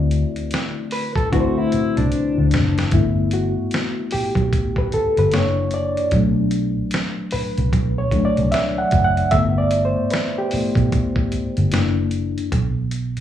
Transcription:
Already playing: fingered electric bass D2, reed electric piano D3 A3 C4 E4 F#4 B4 D5
0.11 closed hi-hat
0.36 closed hi-hat
0.51 snare, closed hi-hat
0.91 clean electric guitar B4, open hi-hat
1.16 clean electric guitar A4, kick, closed hi-hat
1.31 reed electric piano D3 A3 C4 E4 F#4 B4, clean electric guitar F#4, kick, closed hi-hat
1.40 reed electric piano C5
1.58 clean electric guitar E4
1.72 muted fingered electric bass stroke, closed hi-hat
1.97 fingered electric bass C2, clean electric guitar D4, closed hi-hat
2.12 closed hi-hat
2.38 fingered electric bass D2
2.51 fingered electric bass F#1, snare, closed hi-hat
2.78 snare, closed hi-hat
2.91 fingered electric bass G1, reed electric piano E3 A3 B3 E4, kick, closed hi-hat
3.31 reed electric piano F#4, closed hi-hat
3.71 snare, closed hi-hat
4.11 reed electric piano G4, muted fingered electric bass stroke, open hi-hat
4.35 fingered electric bass B1, kick, closed hi-hat
4.53 kick, closed hi-hat
4.76 reed electric piano B4, kick
4.92 reed electric piano A4, muted fingered electric bass stroke, closed hi-hat
5.17 fingered electric bass G1, reed electric piano B4, closed hi-hat
5.32 fingered electric bass F#1, reed electric piano E3 A#3 D4 C#5, snare, closed hi-hat
5.71 reed electric piano D5, closed hi-hat
5.97 closed hi-hat
6.11 fingered electric bass B1, reed electric piano F#3 A3 D4, kick, closed hi-hat
6.51 closed hi-hat
6.91 snare, closed hi-hat
7.31 reed electric piano B4, muted fingered electric bass stroke, open hi-hat
7.58 fingered electric bass C2, closed hi-hat
7.73 fingered electric bass B1, kick, closed hi-hat
7.98 reed electric piano C#5
8.11 reed electric piano F#3 A3 D4, kick, closed hi-hat
8.25 reed electric piano D5
8.37 fingered electric bass C2, closed hi-hat
8.52 reed electric piano E5, snare, closed hi-hat
8.78 reed electric piano F#5
8.91 fingered electric bass F#1, kick, closed hi-hat
9.04 reed electric piano F#5
9.17 closed hi-hat
9.31 fingered electric bass G1, reed electric piano E3 A3 B3 E5, kick, closed hi-hat
9.58 reed electric piano D5
9.71 closed hi-hat
9.85 reed electric piano C5
10.10 reed electric piano B4, snare, closed hi-hat
10.38 reed electric piano G4
10.51 reed electric piano E3 A3 B3, muted fingered electric bass stroke, open hi-hat
10.75 fingered electric bass B1, kick, closed hi-hat
10.92 kick, closed hi-hat
11.16 kick
11.32 muted fingered electric bass stroke, closed hi-hat
11.57 fingered electric bass G1, closed hi-hat
11.72 fingered electric bass F#1, reed electric piano E3 A#3 D4, snare, closed hi-hat
12.11 closed hi-hat
12.38 closed hi-hat
12.52 fingered electric bass B1, kick, closed hi-hat
12.91 closed hi-hat
13.17 closed hi-hat

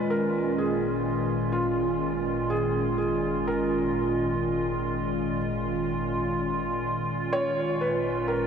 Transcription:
Already playing: sub bass G#1, ambient pad A#2 D#3 G#3 C#4 F4, felt piano B4
0.10 felt piano A#4
0.58 felt piano G#4
1.52 felt piano F4
2.50 felt piano G#4
2.98 felt piano G#4
3.47 felt piano A#4
7.33 sub bass G#1, ambient pad A#2, felt piano C#5
7.81 felt piano B4
8.28 felt piano A#4

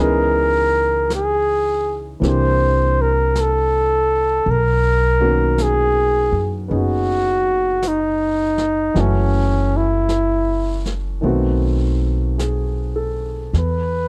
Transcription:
Already playing: upright bass C#2, grand piano E3 B3 C#4
0.00 grand piano D#4 G#4, flugelhorn A#4
1.10 brush sweep, snare, hi-hat pedal
1.15 flugelhorn G#4
2.20 upright bass C2, grand piano E3 A#3 C4 D4, brush sweep, snare
2.24 grand piano G4, flugelhorn C5
3.02 flugelhorn A#4
3.35 brush sweep, snare, hi-hat pedal
3.41 flugelhorn A4
4.46 upright bass B1, brush sweep
4.51 flugelhorn A#4
5.20 grand piano D#3 A#3 B3 C#4 F#4
5.58 brush sweep, snare, hi-hat pedal
5.62 flugelhorn G#4
6.32 upright bass F#2
6.68 upright bass F#1, grand piano B3 C#4 D#4 G#4, brush sweep
6.75 flugelhorn F#4
7.82 brush sweep, snare, hi-hat pedal
7.88 flugelhorn D#4
8.58 snare
8.94 upright bass F#1, grand piano E3 F#3 A3 C#4 F#4, brush sweep, snare
9.01 flugelhorn C#4
9.77 flugelhorn E4
10.09 brush sweep, snare, hi-hat pedal
10.85 snare
11.21 upright bass B1, grand piano D#3 A3 B3 C4, brush sweep
11.26 grand piano F#4
12.38 grand piano G#4, brush sweep, snare, hi-hat pedal
12.96 grand piano A4
13.53 upright bass E2, brush sweep, snare
13.59 flugelhorn B4

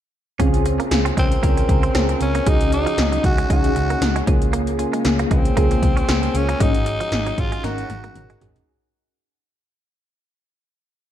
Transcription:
0.39 picked electric bass C#2, synth keys C#3 C4 C#4 F4 G#4, clean electric guitar C#4, kick, closed hi-hat
0.54 closed hi-hat
0.65 synth keys C4 C#4 F4 G#4, muted clean electric guitar stroke, closed hi-hat
0.80 clean electric guitar A#3, closed hi-hat
0.90 picked electric bass C#2, synth keys C4 C#4 F4 G#4, muted clean electric guitar stroke, snare, closed hi-hat
1.05 clean electric guitar C4, closed hi-hat
1.16 picked electric bass C#2, clean electric guitar G#3, synth keys C4 C#4 F4 A#4, tenor saxophone C4, kick, closed hi-hat
1.32 closed hi-hat
1.42 picked electric bass C#2, clean electric guitar A#3, synth keys C4 C#4 F4 A#4, kick, closed hi-hat
1.57 muted clean electric guitar stroke, closed hi-hat
1.68 picked electric bass C#2, synth keys C4 C#4 F4 G#4, kick, closed hi-hat
1.83 clean electric guitar C4, closed hi-hat
1.94 picked electric bass C#2, synth keys C4 C#4 F4 G#4, clean electric guitar C4, snare, closed hi-hat
2.09 muted clean electric guitar stroke, closed hi-hat
2.20 picked electric bass C#2, synth keys C4 C#4 F4 G#4, tenor saxophone C#4, closed hi-hat
2.35 clean electric guitar A#3, closed hi-hat
2.46 picked electric bass C#2, synth keys C#3 C#4 D#4 F#4 G#4, clean electric guitar G#3, tenor saxophone D#4, kick, closed hi-hat
2.61 closed hi-hat
2.72 synth keys C#4 D#4 F#4 G#4, tenor saxophone D#4, muted clean electric guitar stroke, closed hi-hat
2.86 clean electric guitar F3, closed hi-hat
2.98 picked electric bass C#2, synth keys C#4 D#4 F#4 G#4, snare, closed hi-hat
3.12 clean electric guitar F#3, closed hi-hat
3.24 picked electric bass C#2, synth keys C#4 D#4 F#4 G#4, tenor saxophone F#4, muted clean electric guitar stroke, kick, closed hi-hat
3.38 clean electric guitar G#3, closed hi-hat
3.50 picked electric bass C#2, clean electric guitar G#3, synth keys C#4 D#4 F#4 G#4, tenor saxophone F#4, kick, closed hi-hat
3.64 closed hi-hat
3.75 picked electric bass C#2, synth keys C#4 D#4 F#4 G#4, muted clean electric guitar stroke, closed hi-hat
3.90 clean electric guitar A#3, closed hi-hat
4.01 picked electric bass C#2, synth keys C#4 D#4 F#4 G#4, muted clean electric guitar stroke, snare, closed hi-hat
4.16 clean electric guitar G#3, closed hi-hat
4.27 picked electric bass C#2, synth keys C#3 A#3 C#4 F4 G#4, clean electric guitar F3, kick, closed hi-hat
4.42 closed hi-hat
4.53 clean electric guitar A#3, closed hi-hat
4.67 closed hi-hat
4.79 synth keys A#3 C#4 F4 G#4, muted clean electric guitar stroke, closed hi-hat
4.93 clean electric guitar G#3, closed hi-hat
5.04 picked electric bass C#2, synth keys A#3 C#4 F4 G#4, muted clean electric guitar stroke, snare, closed hi-hat
5.19 clean electric guitar A#3, closed hi-hat
5.30 picked electric bass C#2, clean electric guitar G#3, synth keys A#3 C#4 F4 G#4, tenor saxophone C4, kick, closed hi-hat
5.45 closed hi-hat
5.56 picked electric bass C#2, synth keys A#3 C#4 F4 G#4, clean electric guitar A#3, kick, closed hi-hat
5.71 muted clean electric guitar stroke, closed hi-hat
5.82 picked electric bass C#2, synth keys A#3 C#4 F4 G#4, kick, closed hi-hat
5.97 clean electric guitar C#4, closed hi-hat
6.08 picked electric bass C#2, synth keys A#3 C#4 F4 G#4, clean electric guitar C#4, snare, closed hi-hat
6.23 muted clean electric guitar stroke, closed hi-hat
6.34 picked electric bass C#2, synth keys A#3 C#4 F4 G#4, tenor saxophone C#4, closed hi-hat
6.49 clean electric guitar A#3, closed hi-hat
6.60 picked electric bass G#1, synth keys G#2 C#4 D#4 F#4 G#4, clean electric guitar G#3, tenor saxophone D#4, kick, closed hi-hat
6.75 closed hi-hat
6.86 synth keys C#4 D#4 F#4 G#4, muted clean electric guitar stroke, closed hi-hat
7.00 clean electric guitar F3, closed hi-hat
7.12 picked electric bass G#1, synth keys C#4 D#4 F#4 G#4, snare, closed hi-hat
7.26 clean electric guitar F#3, closed hi-hat
7.38 picked electric bass G#1, synth keys C#4 D#4 F#4 G#4, tenor saxophone F4, muted clean electric guitar stroke, kick, closed hi-hat
7.52 clean electric guitar G#3, closed hi-hat
7.63 picked electric bass G#1, clean electric guitar G#3, synth keys C#4 D#4 F#4 A#4, tenor saxophone F#4, snare, closed hi-hat
7.78 closed hi-hat
7.89 picked electric bass G#1, synth keys C#4 D#4 F#4 A#4, muted clean electric guitar stroke, closed hi-hat, high tom
8.04 clean electric guitar A#3, closed hi-hat, high tom
8.15 picked electric bass G#1, synth keys C#4 D#4 F#4 A#4, muted clean electric guitar stroke, closed hi-hat, mid tom
8.30 clean electric guitar G#3, closed hi-hat
8.40 picked electric bass G#1, clean electric guitar F#3, synth keys C#4 D#4 F#4 G#4, closed hi-hat, floor tom
8.56 closed hi-hat, floor tom

